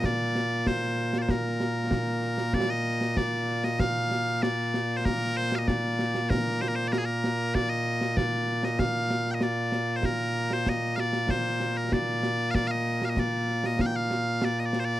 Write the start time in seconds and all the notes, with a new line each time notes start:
Already playing: A#2 A#3
0.04 D5, concert bass drum, snare
0.35 snare
0.66 C5, concert bass drum, snare
0.82 snare
0.98 snare
1.13 snare
1.18 C5 D5
1.29 A#4, concert bass drum, snare
1.60 snare
1.91 concert bass drum, snare
2.22 snare
2.38 snare
2.53 D5, concert bass drum, snare
2.70 D#5
3.01 snare
3.17 D5, concert bass drum, snare
3.48 snare
3.64 D#5, snare
3.79 F5, concert bass drum, snare
4.11 snare
4.27 snare
4.42 D5, snare
4.74 snare
4.97 C5
5.05 A#4, concert bass drum, snare
5.37 C5
5.52 F5, snare
5.59 D#5
5.67 D5, concert bass drum, snare
5.99 snare
6.15 snare
6.30 A#4, concert bass drum, snare
6.61 C5, snare
6.68 A#4
6.75 C5
6.88 D5
6.92 A#4, snare
6.98 G#4
7.05 A#4
7.24 snare
7.55 D5, concert bass drum, snare
7.69 D#5
8.01 snare
8.17 D5, concert bass drum, snare
8.48 snare
8.63 D#5, snare
8.79 F5, concert bass drum, snare
9.10 snare
9.26 snare
9.31 D#5 G5
9.41 D5, snare
9.72 snare
9.96 C5
10.03 A#4, concert bass drum, snare
10.51 C5, snare
10.66 D#5, concert bass drum, snare
10.96 D5 F5, snare
11.13 snare
11.29 C5, concert bass drum, snare
11.60 snare
11.77 A#4
11.92 D5, concert bass drum, snare
12.23 snare
12.51 D5 F5, concert bass drum, snare
12.67 D#5 F5
13.02 F5, snare
13.10 D#5
13.17 D5, concert bass drum, snare
13.48 snare
13.64 D#5, snare
13.79 F5, concert bass drum, snare
13.86 G5
13.96 F5
14.11 snare
14.42 D5, snare
14.60 D#5
14.65 D5
14.73 snare
14.80 C5
14.85 D5